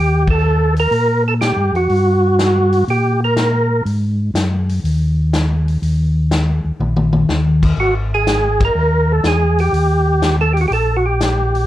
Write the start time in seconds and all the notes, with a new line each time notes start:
Already playing: D#2
0.00 G4
0.27 A4, kick, ride
0.76 A#4, open hi-hat
0.91 A#2, open hi-hat
1.28 A4
1.41 G4, snare, closed hi-hat
1.56 G2
1.73 F2 F#4, open hi-hat
1.90 G2, open hi-hat
2.39 snare, closed hi-hat
2.72 open hi-hat
2.88 A#2 G4, open hi-hat
3.24 A#4
3.37 snare, closed hi-hat
3.85 G#2, open hi-hat
4.34 F#2, snare, closed hi-hat
4.69 open hi-hat
4.84 D#2, open hi-hat
5.33 snare, closed hi-hat
5.68 open hi-hat
5.82 D#2, open hi-hat
6.31 snare, closed hi-hat
6.64 D#2
6.80 A#1, mid tom
6.97 mid tom
7.13 mid tom
7.29 D#2, snare
7.63 kick, crash
7.78 G#1 F#4
8.14 G#4
8.27 snare, closed hi-hat
8.60 kick, ride
8.65 A#4
8.75 D#2
9.12 A4
9.24 E2 G#4, snare, closed hi-hat
9.58 G4, open hi-hat
9.72 D#2, open hi-hat
10.22 snare, closed hi-hat
10.41 A4
10.53 G4, open hi-hat
10.61 F#4
10.68 A#1 G4, open hi-hat
10.73 A4
10.97 F#4
11.06 G4
11.21 snare, closed hi-hat
11.55 open hi-hat